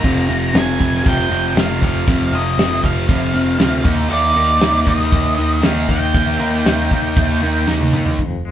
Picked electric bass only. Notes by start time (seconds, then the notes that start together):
0.04 F1
0.29 F1
0.55 F1
0.81 F1
1.06 F1
1.31 F1
1.56 F1
1.82 F1
2.08 F1
2.32 F1
2.58 F1
2.83 F1
3.09 F1
3.34 F1
3.60 D2
3.85 D#2
4.11 D#2
4.36 D#2
4.61 D#2
4.87 D#2
5.13 D#2
5.39 D#2
5.64 D#2
5.89 D#2
6.15 D#2
6.40 D#2
6.66 D#2
6.91 D#2
7.17 D#2
7.42 D#2
7.68 D#2
7.93 D#2
8.19 F1